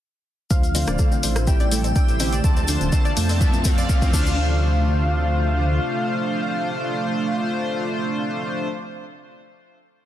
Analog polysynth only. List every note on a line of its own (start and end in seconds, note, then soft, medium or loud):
0.51 0.62 D3 medium
0.51 0.62 A3 medium
0.51 0.62 D4 medium
0.51 0.62 F4 medium
0.51 0.62 C5 medium
0.75 0.96 D3 medium
0.75 0.96 A3 medium
0.75 0.96 D4 medium
0.75 0.96 F4 medium
0.75 0.96 C5 loud
0.99 1.17 D3 medium
0.99 1.17 A3 medium
0.99 1.17 D4 medium
0.99 1.17 F4 medium
0.99 1.17 C5 loud
1.23 1.45 A2 medium
1.23 1.45 A3 medium
1.23 1.45 D4 medium
1.23 1.45 F4 medium
1.23 1.45 C5 medium
1.47 1.59 A2 loud
1.47 1.59 A3 medium
1.47 1.59 E4 medium
1.47 1.59 G4 medium
1.47 1.59 E5 loud
1.71 1.83 A2 medium
1.71 1.83 A3 medium
1.71 1.83 E4 medium
1.71 1.83 G4 medium
1.71 1.83 A4 loud
2.08 2.18 A2 medium
2.08 2.18 A3 medium
2.08 2.18 E4 medium
2.08 2.18 G4 medium
2.08 2.18 C5 medium
2.20 2.32 D3 loud
2.20 2.32 A3 medium
2.20 2.32 E4 medium
2.20 2.32 G4 medium
2.20 2.32 C5 loud
2.44 2.56 D3 medium
2.44 2.56 A3 medium
2.44 2.56 D4 medium
2.44 2.56 F4 medium
2.44 2.56 C5 medium
2.68 2.90 D3 medium
2.68 2.90 A3 medium
2.68 2.90 D4 medium
2.68 2.90 F4 medium
2.68 2.90 C5 loud
2.92 3.11 D3 medium
2.92 3.11 A3 medium
2.92 3.11 D4 medium
2.92 3.11 F4 medium
2.92 3.11 C5 loud
3.17 3.38 A3 medium
3.17 3.38 D4 medium
3.17 3.38 F4 medium
3.17 3.38 C5 medium
3.41 3.53 A3 loud
3.41 3.53 E4 medium
3.41 3.53 F4 medium
3.41 3.53 E5 loud
3.65 3.77 A3 medium
3.65 3.77 E4 medium
3.65 3.77 F4 medium
3.65 3.77 A4 loud
4.02 4.12 A3 medium
4.02 4.12 E4 medium
4.02 4.12 F4 medium
4.02 4.12 C5 medium
4.13 8.67 A3 medium
4.13 8.67 D4 medium
4.13 8.67 F4 medium
4.13 8.67 C5 loud